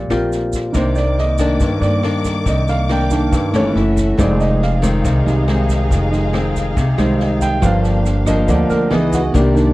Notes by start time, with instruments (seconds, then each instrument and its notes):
Already playing: nylon-string guitar A#2, grand piano F3 G3 C4 G4 A#4
0.10 upright bass A#1, nylon-string guitar C4 F4 G4, grand piano A#4, cross-stick, snare, shaker
0.32 snare, shaker
0.53 kick, snare, shaker
0.72 upright bass C2, nylon-string guitar C3 D#3 A#3 D4, grand piano D#3 A#3 D#4 C5, string section A#3 D6, kick, cross-stick, snare, shaker
0.95 grand piano D5, snare, shaker
1.18 grand piano D#5, snare
1.38 nylon-string guitar D#3 A#3 D4, kick, cross-stick, snare, shaker
1.60 upright bass G2, nylon-string guitar G2, kick, snare, shaker
1.81 upright bass G2, grand piano D5, snare, shaker
2.03 nylon-string guitar D#3 A#3 D4, cross-stick, snare
2.24 kick, snare, shaker
2.45 upright bass C2, nylon-string guitar C3, grand piano D#5, kick, snare, shaker
2.68 grand piano F5, snare, shaker
2.89 nylon-string guitar D#3 A#3 D4, grand piano G5, cross-stick, snare
3.10 grand piano D#3 A#3 D4, kick, snare, shaker
3.32 nylon-string guitar G2, upright bass G2, kick, snare, shaker
3.53 upright bass G1, nylon-string guitar E3 A3 C#4, grand piano C#5, cross-stick, snare, shaker
3.75 upright bass F#1, string section A3 F#4 E5, grand piano A3 E4, snare
3.97 kick, snare, shaker
4.17 upright bass F1, nylon-string guitar F2 D#3 G#3 C4, grand piano G#3 D#4 D5, string section D#4 G#4 F5, kick, cross-stick, snare, shaker
4.40 grand piano D#5, snare, shaker
4.62 grand piano F5, snare
4.82 nylon-string guitar D#3 G#3 C4, kick, cross-stick, snare, shaker
5.04 upright bass C2, nylon-string guitar C3, kick, snare, shaker
5.26 upright bass C2, grand piano G3 G#3 D#4, snare, shaker
5.48 nylon-string guitar D#3 G#3 C4, cross-stick, snare
5.69 kick, snare, shaker
5.91 upright bass F1, nylon-string guitar F2, kick, snare, shaker
6.11 grand piano G#3 D#4, snare, shaker
6.33 nylon-string guitar D#3 G#3 C4, cross-stick, snare
6.55 kick, snare, shaker
6.77 upright bass C2, nylon-string guitar C3, kick, snare, shaker
6.98 upright bass C2, nylon-string guitar D#3 G#3 C4, grand piano G3 G#3 D#4 C5, cross-stick, snare, shaker
7.20 grand piano D#5, snare
7.41 grand piano G5, kick, snare, shaker
7.62 upright bass G1, nylon-string guitar G2 F3 A#3 D4, grand piano F3 A#3 D4 F5, string section A#3 G4, kick, cross-stick, snare, shaker
7.84 snare, shaker
8.05 snare, shaker
8.26 nylon-string guitar F3 A#3 D4, grand piano D#5, kick, cross-stick, snare, shaker
8.47 upright bass D2, nylon-string guitar D3, grand piano F3 A#3 D4 D5, kick, snare, shaker
8.70 upright bass D2, grand piano A#4, snare, shaker
8.90 upright bass C#2, grand piano E3 B3 D#4 G#4, nylon-string guitar E3 B3 D#4, string section B3 D#5, cross-stick, snare
9.13 grand piano F#4, kick, snare, shaker
9.34 upright bass C2, nylon-string guitar C3 D#3 A#3 D4, string section A#3 D5, grand piano G4, kick, snare, shaker
9.54 grand piano D#3 A#3 D4, snare, shaker